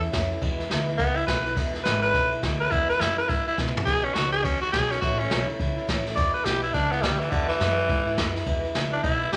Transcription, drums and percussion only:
0.03 ride
0.13 kick, snare, ride
0.31 ride
0.42 kick, ride
0.60 snare, ride
0.71 snare, ride
0.89 ride
0.99 kick, ride
1.17 ride
1.28 kick, snare, ride
1.46 snare, ride
1.56 kick, snare, ride
1.75 snare, ride
1.85 snare, ride
2.03 ride
2.14 kick, snare, ride
2.32 ride
2.43 kick, snare, ride
2.61 ride
2.72 kick, ride
2.90 snare, ride
3.01 snare, ride
3.19 ride
3.29 kick, snare, ride
3.47 ride
3.58 kick, snare
3.68 mid tom
3.77 floor tom
3.87 kick, snare, ride
4.05 ride
4.16 snare, ride
4.34 ride
4.44 kick, snare, ride
4.63 ride
4.73 kick, snare, ride
4.91 snare, ride
5.02 kick, snare, ride
5.20 ride
5.31 snare, ride
5.49 ride
5.60 kick, ride
5.78 ride
5.88 kick, snare, ride
6.06 snare, ride
6.17 kick, snare, ride
6.35 ride
6.45 snare, ride
6.63 ride
6.74 kick, snare, ride
6.92 ride
7.03 kick, snare, ride
7.21 ride
7.32 kick, ride
7.50 snare, ride
7.60 snare, ride
7.79 ride
7.89 kick, ride
8.07 ride
8.18 kick, snare, ride
8.36 snare, ride
8.46 kick, ride
8.64 ride
8.75 snare, ride
8.93 ride
9.03 kick, ride
9.22 ride
9.33 snare, ride

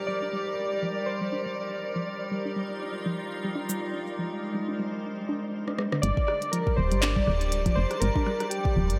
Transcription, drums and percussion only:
3.69 cabasa
5.68 cross-stick
5.79 cross-stick
5.92 cross-stick
6.03 closed hi-hat
6.17 kick
6.28 cross-stick
6.42 closed hi-hat
6.53 closed hi-hat
6.67 kick
6.92 closed hi-hat
7.03 clap, closed hi-hat
7.16 kick
7.27 cross-stick
7.41 closed hi-hat
7.52 closed hi-hat
7.66 kick, closed hi-hat
7.91 cross-stick, closed hi-hat
8.02 closed hi-hat
8.16 kick
8.27 cross-stick
8.40 cross-stick, closed hi-hat
8.51 closed hi-hat
8.65 kick
8.90 closed hi-hat

